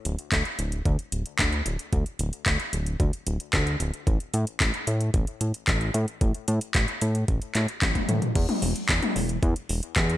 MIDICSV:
0, 0, Header, 1, 3, 480
1, 0, Start_track
1, 0, Tempo, 535714
1, 1726, Time_signature, 4, 2, 24, 8
1, 9116, End_track
2, 0, Start_track
2, 0, Title_t, "Analog synth bass"
2, 0, Program_c, 0, 38
2, 46, Note_on_c, 0, 26, 97
2, 149, Note_off_c, 0, 26, 0
2, 286, Note_on_c, 0, 38, 83
2, 389, Note_off_c, 0, 38, 0
2, 526, Note_on_c, 0, 26, 93
2, 733, Note_off_c, 0, 26, 0
2, 766, Note_on_c, 0, 38, 104
2, 870, Note_off_c, 0, 38, 0
2, 1006, Note_on_c, 0, 26, 77
2, 1109, Note_off_c, 0, 26, 0
2, 1246, Note_on_c, 0, 38, 94
2, 1453, Note_off_c, 0, 38, 0
2, 1486, Note_on_c, 0, 26, 96
2, 1589, Note_off_c, 0, 26, 0
2, 1726, Note_on_c, 0, 38, 100
2, 1829, Note_off_c, 0, 38, 0
2, 1965, Note_on_c, 0, 26, 96
2, 2069, Note_off_c, 0, 26, 0
2, 2206, Note_on_c, 0, 38, 87
2, 2310, Note_off_c, 0, 38, 0
2, 2445, Note_on_c, 0, 26, 85
2, 2653, Note_off_c, 0, 26, 0
2, 2686, Note_on_c, 0, 38, 86
2, 2789, Note_off_c, 0, 38, 0
2, 2926, Note_on_c, 0, 26, 90
2, 3030, Note_off_c, 0, 26, 0
2, 3166, Note_on_c, 0, 38, 90
2, 3373, Note_off_c, 0, 38, 0
2, 3405, Note_on_c, 0, 26, 97
2, 3509, Note_off_c, 0, 26, 0
2, 3646, Note_on_c, 0, 33, 103
2, 3749, Note_off_c, 0, 33, 0
2, 3886, Note_on_c, 0, 45, 99
2, 3990, Note_off_c, 0, 45, 0
2, 4126, Note_on_c, 0, 33, 85
2, 4230, Note_off_c, 0, 33, 0
2, 4366, Note_on_c, 0, 45, 85
2, 4573, Note_off_c, 0, 45, 0
2, 4606, Note_on_c, 0, 33, 103
2, 4709, Note_off_c, 0, 33, 0
2, 4845, Note_on_c, 0, 45, 75
2, 4949, Note_off_c, 0, 45, 0
2, 5086, Note_on_c, 0, 33, 94
2, 5293, Note_off_c, 0, 33, 0
2, 5325, Note_on_c, 0, 45, 103
2, 5429, Note_off_c, 0, 45, 0
2, 5566, Note_on_c, 0, 33, 105
2, 5669, Note_off_c, 0, 33, 0
2, 5806, Note_on_c, 0, 45, 101
2, 5909, Note_off_c, 0, 45, 0
2, 6046, Note_on_c, 0, 33, 85
2, 6149, Note_off_c, 0, 33, 0
2, 6287, Note_on_c, 0, 45, 85
2, 6493, Note_off_c, 0, 45, 0
2, 6526, Note_on_c, 0, 33, 79
2, 6629, Note_off_c, 0, 33, 0
2, 6766, Note_on_c, 0, 45, 94
2, 6869, Note_off_c, 0, 45, 0
2, 7006, Note_on_c, 0, 33, 87
2, 7109, Note_off_c, 0, 33, 0
2, 7246, Note_on_c, 0, 45, 81
2, 7350, Note_off_c, 0, 45, 0
2, 7486, Note_on_c, 0, 40, 97
2, 7590, Note_off_c, 0, 40, 0
2, 7726, Note_on_c, 0, 28, 101
2, 7830, Note_off_c, 0, 28, 0
2, 7966, Note_on_c, 0, 40, 88
2, 8070, Note_off_c, 0, 40, 0
2, 8206, Note_on_c, 0, 28, 86
2, 8413, Note_off_c, 0, 28, 0
2, 8446, Note_on_c, 0, 40, 114
2, 8549, Note_off_c, 0, 40, 0
2, 8686, Note_on_c, 0, 28, 80
2, 8789, Note_off_c, 0, 28, 0
2, 8926, Note_on_c, 0, 40, 93
2, 9116, Note_off_c, 0, 40, 0
2, 9116, End_track
3, 0, Start_track
3, 0, Title_t, "Drums"
3, 46, Note_on_c, 9, 42, 86
3, 136, Note_off_c, 9, 42, 0
3, 166, Note_on_c, 9, 42, 38
3, 256, Note_off_c, 9, 42, 0
3, 286, Note_on_c, 9, 36, 111
3, 287, Note_on_c, 9, 39, 118
3, 287, Note_on_c, 9, 42, 64
3, 376, Note_off_c, 9, 36, 0
3, 376, Note_off_c, 9, 39, 0
3, 376, Note_off_c, 9, 42, 0
3, 406, Note_on_c, 9, 42, 36
3, 496, Note_off_c, 9, 42, 0
3, 526, Note_on_c, 9, 42, 90
3, 616, Note_off_c, 9, 42, 0
3, 646, Note_on_c, 9, 42, 36
3, 736, Note_off_c, 9, 42, 0
3, 766, Note_on_c, 9, 36, 110
3, 766, Note_on_c, 9, 42, 55
3, 856, Note_off_c, 9, 36, 0
3, 856, Note_off_c, 9, 42, 0
3, 886, Note_on_c, 9, 42, 37
3, 975, Note_off_c, 9, 42, 0
3, 1006, Note_on_c, 9, 42, 84
3, 1095, Note_off_c, 9, 42, 0
3, 1125, Note_on_c, 9, 42, 35
3, 1215, Note_off_c, 9, 42, 0
3, 1245, Note_on_c, 9, 39, 114
3, 1245, Note_on_c, 9, 42, 61
3, 1246, Note_on_c, 9, 36, 113
3, 1335, Note_off_c, 9, 39, 0
3, 1335, Note_off_c, 9, 42, 0
3, 1336, Note_off_c, 9, 36, 0
3, 1366, Note_on_c, 9, 42, 34
3, 1456, Note_off_c, 9, 42, 0
3, 1485, Note_on_c, 9, 42, 82
3, 1575, Note_off_c, 9, 42, 0
3, 1606, Note_on_c, 9, 42, 36
3, 1696, Note_off_c, 9, 42, 0
3, 1725, Note_on_c, 9, 42, 60
3, 1726, Note_on_c, 9, 36, 105
3, 1815, Note_off_c, 9, 42, 0
3, 1816, Note_off_c, 9, 36, 0
3, 1846, Note_on_c, 9, 42, 39
3, 1936, Note_off_c, 9, 42, 0
3, 1965, Note_on_c, 9, 42, 92
3, 2055, Note_off_c, 9, 42, 0
3, 2086, Note_on_c, 9, 42, 38
3, 2176, Note_off_c, 9, 42, 0
3, 2206, Note_on_c, 9, 36, 114
3, 2206, Note_on_c, 9, 39, 117
3, 2206, Note_on_c, 9, 42, 63
3, 2295, Note_off_c, 9, 39, 0
3, 2295, Note_off_c, 9, 42, 0
3, 2296, Note_off_c, 9, 36, 0
3, 2326, Note_on_c, 9, 42, 37
3, 2416, Note_off_c, 9, 42, 0
3, 2446, Note_on_c, 9, 42, 92
3, 2536, Note_off_c, 9, 42, 0
3, 2567, Note_on_c, 9, 42, 37
3, 2656, Note_off_c, 9, 42, 0
3, 2686, Note_on_c, 9, 36, 115
3, 2686, Note_on_c, 9, 42, 57
3, 2776, Note_off_c, 9, 36, 0
3, 2776, Note_off_c, 9, 42, 0
3, 2806, Note_on_c, 9, 42, 41
3, 2896, Note_off_c, 9, 42, 0
3, 2926, Note_on_c, 9, 42, 83
3, 3015, Note_off_c, 9, 42, 0
3, 3046, Note_on_c, 9, 42, 37
3, 3136, Note_off_c, 9, 42, 0
3, 3166, Note_on_c, 9, 36, 114
3, 3166, Note_on_c, 9, 39, 111
3, 3166, Note_on_c, 9, 42, 64
3, 3255, Note_off_c, 9, 36, 0
3, 3256, Note_off_c, 9, 39, 0
3, 3256, Note_off_c, 9, 42, 0
3, 3286, Note_on_c, 9, 42, 37
3, 3376, Note_off_c, 9, 42, 0
3, 3406, Note_on_c, 9, 42, 87
3, 3495, Note_off_c, 9, 42, 0
3, 3526, Note_on_c, 9, 42, 39
3, 3616, Note_off_c, 9, 42, 0
3, 3646, Note_on_c, 9, 36, 107
3, 3646, Note_on_c, 9, 42, 62
3, 3736, Note_off_c, 9, 36, 0
3, 3736, Note_off_c, 9, 42, 0
3, 3766, Note_on_c, 9, 42, 41
3, 3855, Note_off_c, 9, 42, 0
3, 3885, Note_on_c, 9, 42, 93
3, 3975, Note_off_c, 9, 42, 0
3, 4005, Note_on_c, 9, 42, 40
3, 4095, Note_off_c, 9, 42, 0
3, 4126, Note_on_c, 9, 36, 109
3, 4126, Note_on_c, 9, 39, 114
3, 4126, Note_on_c, 9, 42, 64
3, 4215, Note_off_c, 9, 39, 0
3, 4215, Note_off_c, 9, 42, 0
3, 4216, Note_off_c, 9, 36, 0
3, 4246, Note_on_c, 9, 42, 37
3, 4335, Note_off_c, 9, 42, 0
3, 4365, Note_on_c, 9, 42, 94
3, 4455, Note_off_c, 9, 42, 0
3, 4485, Note_on_c, 9, 42, 37
3, 4575, Note_off_c, 9, 42, 0
3, 4604, Note_on_c, 9, 42, 62
3, 4606, Note_on_c, 9, 36, 117
3, 4694, Note_off_c, 9, 42, 0
3, 4695, Note_off_c, 9, 36, 0
3, 4725, Note_on_c, 9, 42, 41
3, 4815, Note_off_c, 9, 42, 0
3, 4845, Note_on_c, 9, 42, 92
3, 4935, Note_off_c, 9, 42, 0
3, 4965, Note_on_c, 9, 42, 38
3, 5055, Note_off_c, 9, 42, 0
3, 5085, Note_on_c, 9, 39, 108
3, 5085, Note_on_c, 9, 42, 65
3, 5086, Note_on_c, 9, 36, 109
3, 5174, Note_off_c, 9, 39, 0
3, 5174, Note_off_c, 9, 42, 0
3, 5175, Note_off_c, 9, 36, 0
3, 5205, Note_on_c, 9, 42, 37
3, 5294, Note_off_c, 9, 42, 0
3, 5325, Note_on_c, 9, 42, 91
3, 5415, Note_off_c, 9, 42, 0
3, 5446, Note_on_c, 9, 42, 39
3, 5535, Note_off_c, 9, 42, 0
3, 5565, Note_on_c, 9, 42, 64
3, 5566, Note_on_c, 9, 36, 108
3, 5655, Note_off_c, 9, 36, 0
3, 5655, Note_off_c, 9, 42, 0
3, 5685, Note_on_c, 9, 42, 41
3, 5775, Note_off_c, 9, 42, 0
3, 5804, Note_on_c, 9, 42, 98
3, 5894, Note_off_c, 9, 42, 0
3, 5924, Note_on_c, 9, 42, 42
3, 6014, Note_off_c, 9, 42, 0
3, 6045, Note_on_c, 9, 39, 109
3, 6045, Note_on_c, 9, 42, 69
3, 6046, Note_on_c, 9, 36, 111
3, 6134, Note_off_c, 9, 39, 0
3, 6134, Note_off_c, 9, 42, 0
3, 6135, Note_off_c, 9, 36, 0
3, 6164, Note_on_c, 9, 42, 41
3, 6254, Note_off_c, 9, 42, 0
3, 6285, Note_on_c, 9, 42, 96
3, 6375, Note_off_c, 9, 42, 0
3, 6405, Note_on_c, 9, 42, 39
3, 6495, Note_off_c, 9, 42, 0
3, 6525, Note_on_c, 9, 42, 66
3, 6526, Note_on_c, 9, 36, 118
3, 6615, Note_off_c, 9, 36, 0
3, 6615, Note_off_c, 9, 42, 0
3, 6645, Note_on_c, 9, 42, 42
3, 6734, Note_off_c, 9, 42, 0
3, 6765, Note_on_c, 9, 39, 56
3, 6765, Note_on_c, 9, 42, 96
3, 6854, Note_off_c, 9, 39, 0
3, 6854, Note_off_c, 9, 42, 0
3, 6885, Note_on_c, 9, 42, 40
3, 6975, Note_off_c, 9, 42, 0
3, 7005, Note_on_c, 9, 39, 109
3, 7005, Note_on_c, 9, 42, 65
3, 7005, Note_on_c, 9, 48, 60
3, 7006, Note_on_c, 9, 36, 108
3, 7094, Note_off_c, 9, 39, 0
3, 7094, Note_off_c, 9, 42, 0
3, 7094, Note_off_c, 9, 48, 0
3, 7096, Note_off_c, 9, 36, 0
3, 7125, Note_on_c, 9, 42, 39
3, 7125, Note_on_c, 9, 48, 59
3, 7126, Note_on_c, 9, 36, 54
3, 7215, Note_off_c, 9, 42, 0
3, 7215, Note_off_c, 9, 48, 0
3, 7216, Note_off_c, 9, 36, 0
3, 7245, Note_on_c, 9, 42, 89
3, 7245, Note_on_c, 9, 47, 80
3, 7335, Note_off_c, 9, 42, 0
3, 7335, Note_off_c, 9, 47, 0
3, 7365, Note_on_c, 9, 42, 41
3, 7365, Note_on_c, 9, 45, 80
3, 7455, Note_off_c, 9, 42, 0
3, 7455, Note_off_c, 9, 45, 0
3, 7485, Note_on_c, 9, 42, 67
3, 7485, Note_on_c, 9, 49, 96
3, 7486, Note_on_c, 9, 36, 116
3, 7575, Note_off_c, 9, 42, 0
3, 7575, Note_off_c, 9, 49, 0
3, 7576, Note_off_c, 9, 36, 0
3, 7605, Note_on_c, 9, 42, 41
3, 7605, Note_on_c, 9, 48, 75
3, 7695, Note_off_c, 9, 42, 0
3, 7695, Note_off_c, 9, 48, 0
3, 7725, Note_on_c, 9, 46, 108
3, 7815, Note_off_c, 9, 46, 0
3, 7845, Note_on_c, 9, 42, 43
3, 7935, Note_off_c, 9, 42, 0
3, 7966, Note_on_c, 9, 36, 117
3, 7966, Note_on_c, 9, 39, 122
3, 7966, Note_on_c, 9, 42, 72
3, 8055, Note_off_c, 9, 36, 0
3, 8055, Note_off_c, 9, 39, 0
3, 8055, Note_off_c, 9, 42, 0
3, 8087, Note_on_c, 9, 42, 39
3, 8087, Note_on_c, 9, 48, 76
3, 8176, Note_off_c, 9, 42, 0
3, 8176, Note_off_c, 9, 48, 0
3, 8207, Note_on_c, 9, 46, 98
3, 8296, Note_off_c, 9, 46, 0
3, 8326, Note_on_c, 9, 42, 40
3, 8416, Note_off_c, 9, 42, 0
3, 8446, Note_on_c, 9, 36, 121
3, 8446, Note_on_c, 9, 42, 63
3, 8535, Note_off_c, 9, 36, 0
3, 8535, Note_off_c, 9, 42, 0
3, 8566, Note_on_c, 9, 42, 42
3, 8655, Note_off_c, 9, 42, 0
3, 8685, Note_on_c, 9, 46, 104
3, 8775, Note_off_c, 9, 46, 0
3, 8806, Note_on_c, 9, 42, 41
3, 8895, Note_off_c, 9, 42, 0
3, 8925, Note_on_c, 9, 39, 118
3, 8925, Note_on_c, 9, 42, 68
3, 8926, Note_on_c, 9, 36, 124
3, 9015, Note_off_c, 9, 36, 0
3, 9015, Note_off_c, 9, 39, 0
3, 9015, Note_off_c, 9, 42, 0
3, 9046, Note_on_c, 9, 42, 42
3, 9116, Note_off_c, 9, 42, 0
3, 9116, End_track
0, 0, End_of_file